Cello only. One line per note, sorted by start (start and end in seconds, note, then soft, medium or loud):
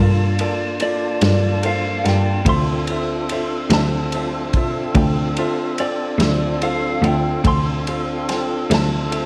0.00 0.35 G2 loud
1.22 2.01 G2 loud
2.05 2.24 G2 medium
2.46 3.67 D2 medium
3.70 4.92 D2 medium
4.95 5.34 D2 loud
6.19 6.99 D2 medium
7.02 7.22 D2 medium
7.44 8.66 D2 medium
8.70 9.26 D2 medium